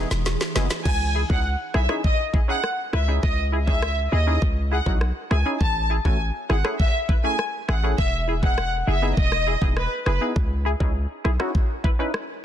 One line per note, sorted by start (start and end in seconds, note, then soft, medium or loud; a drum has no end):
0.00 0.83 E3 medium
0.00 0.83 D#4 medium
0.00 0.83 G#4 medium
0.11 0.37 E1 medium
0.11 snare medium
0.11 shaker medium
0.26 snare medium
0.26 high woodblock medium
0.26 shaker medium
0.41 snare medium
0.41 shaker medium
0.55 0.69 F#1 medium
0.55 0.67 B3 medium
0.55 0.68 D#4 medium
0.55 0.68 E4 medium
0.55 0.68 G#4 loud
0.55 snare loud
0.55 closed hi-hat medium
0.55 cabasa medium
0.55 shaker medium
0.70 snare medium
0.70 shaker medium
0.85 1.24 C#2 loud
0.85 1.09 G#5 loud
0.85 kick loud
0.85 crash medium
1.15 1.21 E4 medium
1.15 1.21 G#4 medium
1.30 1.56 C#2 loud
1.30 1.42 C#4 medium
1.30 1.42 D#4 medium
1.30 1.42 E4 medium
1.30 1.42 G#4 medium
1.30 1.42 F#5 medium
1.30 kick medium
1.74 1.88 B1 loud
1.74 1.80 E4 medium
1.74 1.81 G#4 medium
1.74 1.86 E5 medium
1.74 cross-stick medium
1.89 2.01 C#4 medium
1.89 2.01 D#4 medium
1.89 2.01 E4 medium
1.89 2.01 G#4 medium
1.89 cross-stick medium
2.04 2.16 D#5 medium
2.04 kick medium
2.33 2.40 E4 medium
2.33 2.40 G#4 medium
2.33 kick medium
2.48 2.60 C#4 medium
2.48 2.61 D#4 medium
2.48 2.61 E4 medium
2.48 2.61 G#4 medium
2.48 2.61 F#5 medium
2.64 cross-stick medium
2.93 3.19 C#2 loud
2.93 2.99 E4 medium
2.93 3.00 B4 medium
2.93 3.05 E5 medium
2.93 cross-stick medium
3.08 3.20 C#4 medium
3.08 3.20 D#4 medium
3.08 3.20 E4 medium
3.08 3.20 G#4 medium
3.23 4.08 C#2 loud
3.23 3.35 D#5 medium
3.23 kick loud
3.52 3.58 E4 medium
3.52 3.59 G#4 medium
3.67 3.79 C#4 medium
3.67 3.79 D#4 medium
3.67 3.80 E4 medium
3.67 3.80 G#4 medium
3.67 3.91 E5 medium
3.67 kick medium
3.82 cross-stick loud
4.12 4.38 D#2 medium
4.12 4.18 E4 medium
4.12 4.18 G#4 medium
4.12 4.35 D#5 medium
4.27 4.39 C#4 medium
4.27 4.39 D#4 medium
4.27 4.39 E4 medium
4.27 4.39 G#4 medium
4.42 4.81 C#2 loud
4.42 kick medium
4.72 4.78 E4 medium
4.72 4.78 G#4 medium
4.72 4.83 F#5 medium
4.86 5.12 B1 medium
4.86 4.98 C#4 medium
4.86 4.98 D#4 medium
4.86 4.99 E4 medium
4.86 4.99 F#4 medium
4.86 kick loud
5.01 cross-stick medium
5.31 5.44 C#2 loud
5.31 5.37 E4 medium
5.31 5.37 G#4 medium
5.31 5.43 G#5 medium
5.31 cross-stick medium
5.45 5.58 C#4 medium
5.45 5.58 D#4 medium
5.45 5.58 E4 medium
5.45 5.58 G#4 medium
5.61 6.00 A1 loud
5.61 5.84 A5 loud
5.61 kick loud
5.90 5.96 E4 medium
5.90 5.97 G#4 medium
6.05 6.31 A1 medium
6.05 6.17 A3 medium
6.05 6.17 C#4 medium
6.05 6.17 E4 medium
6.05 6.17 F#4 medium
6.05 6.17 G#5 medium
6.05 kick medium
6.49 6.63 G#1 medium
6.49 6.56 E4 medium
6.49 6.56 G#4 medium
6.49 6.62 F#5 medium
6.49 cross-stick medium
6.64 6.76 A3 medium
6.64 6.77 C#4 medium
6.64 6.77 E4 medium
6.64 6.77 G#4 medium
6.64 cross-stick loud
6.80 6.91 E5 medium
6.80 kick medium
7.09 7.15 E4 medium
7.09 7.15 B4 medium
7.09 kick medium
7.24 7.36 A3 medium
7.24 7.36 C#4 medium
7.24 7.36 E4 medium
7.24 7.36 G#4 medium
7.24 7.36 G#5 medium
7.39 cross-stick medium
7.68 7.95 A1 medium
7.68 7.74 E4 medium
7.68 7.75 G#4 medium
7.68 7.80 F#5 medium
7.68 cross-stick medium
7.83 7.95 A3 medium
7.83 7.95 C#4 medium
7.83 7.96 E4 medium
7.83 7.96 G#4 medium
7.98 8.83 E1 loud
7.98 8.10 E5 loud
7.98 kick loud
8.28 8.34 E4 medium
8.28 8.34 G#4 medium
8.42 8.55 B3 medium
8.42 8.55 D#4 medium
8.42 8.55 E4 medium
8.42 8.55 G#4 medium
8.42 8.66 F#5 medium
8.42 kick medium
8.58 cross-stick medium
8.87 9.13 F#1 medium
8.87 8.93 E4 medium
8.87 8.94 G#4 medium
8.87 9.10 E5 medium
9.02 9.14 B3 medium
9.02 9.14 D#4 medium
9.02 9.14 E4 medium
9.02 9.15 G#4 medium
9.17 9.56 E1 loud
9.17 9.59 D#5 loud
9.17 kick medium
9.32 cross-stick medium
9.47 9.53 E4 medium
9.47 9.53 G#4 medium
9.61 9.88 E1 medium
9.61 9.73 B3 medium
9.61 9.74 D#4 medium
9.61 9.74 E4 medium
9.61 9.74 G#4 medium
9.61 kick loud
9.77 9.88 B4 medium
9.77 cross-stick medium
10.06 10.19 F#1 medium
10.06 10.12 E4 medium
10.06 10.13 G#4 medium
10.06 10.18 B4 medium
10.06 cross-stick medium
10.21 10.33 B3 medium
10.21 10.33 D#4 medium
10.21 10.33 E4 medium
10.21 10.33 G#4 medium
10.36 10.75 C#2 loud
10.36 kick loud
10.65 10.71 E4 medium
10.65 10.72 G#4 loud
10.80 11.06 C#2 loud
10.80 10.92 C#4 medium
10.80 10.92 D#4 medium
10.80 10.93 E4 medium
10.80 10.93 G#4 medium
10.80 kick medium
11.24 11.38 B1 loud
11.24 11.31 E4 medium
11.24 11.31 G#4 loud
11.24 cross-stick medium
11.39 11.52 C#4 medium
11.39 11.52 D#4 medium
11.39 11.52 E4 medium
11.39 11.52 F#4 medium
11.39 cross-stick loud
11.55 kick medium
11.84 11.90 E4 medium
11.84 11.91 B4 loud
11.84 kick medium
11.99 12.11 C#4 medium
11.99 12.11 D#4 medium
11.99 12.11 E4 medium
11.99 12.11 B4 medium
12.14 cross-stick medium